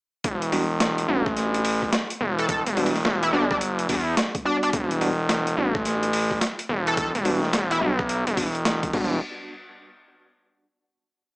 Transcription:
0.24 analog synth bass E1, kick, closed hi-hat
0.42 closed hi-hat
0.52 tine electric piano G3 B3 D4 F#4, cross-stick, open hi-hat
0.80 snare, closed hi-hat
0.98 closed hi-hat
1.08 analog synth bass A1, tine electric piano G3 B3 D4 F#4
1.26 kick, cross-stick
1.37 snare, closed hi-hat
1.54 closed hi-hat
1.65 open hi-hat
1.82 kick, cross-stick
1.93 snare, closed hi-hat
2.10 closed hi-hat
2.21 analog synth bass E1
2.39 analog synth lead A4, closed hi-hat
2.49 analog synth lead A4, kick, closed hi-hat
2.66 analog synth bass E1, closed hi-hat
2.77 tine electric piano G3 B3 D4 F#4, open hi-hat
2.86 open hi-hat
2.95 snare, open hi-hat
3.05 analog synth bass E1, snare
3.22 analog synth lead E4, closed hi-hat
3.33 analog synth bass G1, tine electric piano G3 B3 D4 F#4, analog synth lead D4
3.51 analog synth lead D4, kick, cross-stick
3.61 closed hi-hat
3.79 closed hi-hat
3.89 analog synth bass E2, tine electric piano G3 B3 D4 F#4, kick, open hi-hat
4.17 snare, closed hi-hat
4.35 kick, closed hi-hat
4.45 tine electric piano G3 B3 D4 F#4, analog synth lead D4
4.63 analog synth lead D4, closed hi-hat
4.73 analog synth bass E1, kick, closed hi-hat
4.91 closed hi-hat
5.01 tine electric piano G3 B3 D4 F#4, cross-stick, open hi-hat
5.29 snare, closed hi-hat
5.47 closed hi-hat
5.57 analog synth bass A1, tine electric piano G3 B3 D4 F#4
5.75 kick, cross-stick
5.85 snare, closed hi-hat
6.03 closed hi-hat
6.13 open hi-hat
6.31 kick, cross-stick
6.41 snare, closed hi-hat
6.59 closed hi-hat
6.69 analog synth bass E1
6.87 analog synth lead A4, closed hi-hat
6.97 analog synth lead A4, kick, closed hi-hat
7.15 analog synth bass E1, closed hi-hat
7.25 tine electric piano G3 B3 D4 F#4, open hi-hat
7.43 snare
7.53 analog synth bass E1, snare, closed hi-hat
7.71 analog synth lead E4, closed hi-hat
7.81 analog synth bass B1, tine electric piano G3 B3 D4 F#4
7.99 kick, cross-stick
8.09 closed hi-hat
8.27 analog synth bass E1, closed hi-hat
8.37 tine electric piano G3 B3 D4 F#4, kick, open hi-hat
8.55 closed hi-hat
8.65 snare, closed hi-hat
8.83 kick, closed hi-hat
8.93 analog synth bass E1, tine electric piano G3 B3 D4 F#4, kick, crash

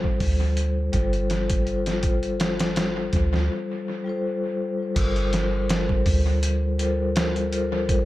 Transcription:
Already playing: 808-style bass G1, vibraphone G3 F4 A4 C5
0.04 kick
0.20 808-style bass D2, kick, open hi-hat
0.57 closed hi-hat
0.92 808-style bass G1, vibraphone G3 F4 A4 C5, kick, closed hi-hat
1.13 closed hi-hat
1.30 snare, closed hi-hat
1.50 kick, closed hi-hat
1.65 vibraphone G3 F4 A4 C5, closed hi-hat
1.86 snare, closed hi-hat
2.01 vibraphone G3 F4 A4, kick, closed hi-hat
2.06 vibraphone C5
2.23 closed hi-hat
2.40 snare, closed hi-hat
2.59 snare, closed hi-hat
2.76 snare, closed hi-hat
3.13 808-style bass D2, kick, closed hi-hat
3.34 snare
4.04 vibraphone G3 F4 A4
4.09 vibraphone C5
4.95 808-style bass G1, vibraphone G3 F4 A4 A#4, kick, closed hi-hat, crash
5.00 vibraphone C5
5.16 closed hi-hat
5.33 snare, closed hi-hat
5.69 snare, closed hi-hat
5.89 kick
6.06 808-style bass D2, kick, open hi-hat
6.43 closed hi-hat
6.78 vibraphone G3 F4 A4 A#4 C5, closed hi-hat
7.16 snare, closed hi-hat
7.36 closed hi-hat
7.51 vibraphone G3 F4 A4 A#4 C5, closed hi-hat
7.86 vibraphone G3 F4 A4, kick, closed hi-hat
7.90 vibraphone A#4 C5

